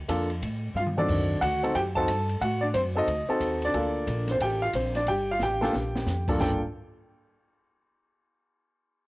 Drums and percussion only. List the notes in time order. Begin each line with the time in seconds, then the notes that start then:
0.09 kick, hi-hat pedal, ride
0.30 ride
0.42 kick, ride
0.76 hi-hat pedal, high tom
0.87 mid tom
0.98 mid tom
1.09 kick, crash
1.42 kick, hi-hat pedal, ride
1.64 ride
1.75 kick, ride
1.96 kick
2.08 kick, hi-hat pedal, ride
2.29 ride
2.41 kick, ride
2.74 kick, hi-hat pedal, ride
3.07 kick, ride
3.40 kick, hi-hat pedal, ride
3.62 ride
3.74 kick, ride
4.07 kick, hi-hat pedal, ride
4.28 snare, ride
4.40 kick, ride
4.73 kick, hi-hat pedal, ride
4.95 snare, ride
5.07 kick, ride
5.40 snare, hi-hat pedal
5.63 snare
5.73 snare
5.96 snare
6.07 snare, hi-hat pedal
6.28 kick, crash
6.40 kick, snare, crash